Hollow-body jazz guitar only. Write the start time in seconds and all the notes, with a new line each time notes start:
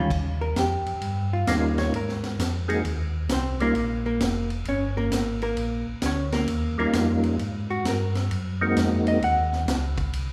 0.41 A#4
0.59 G4
1.33 F4
1.78 C#5
1.96 A#4
2.69 G#4
3.32 C4 C5
3.61 A#3 A#4
4.06 A#3 A#4
4.69 C#4 C#5
4.97 A#3 A#4
5.43 A#3 A#4
6.06 C#4 C#5
6.33 A#3 A#4
6.79 A#3 A#4
7.70 F#4
7.88 A#4
9.08 D#5
9.24 F#5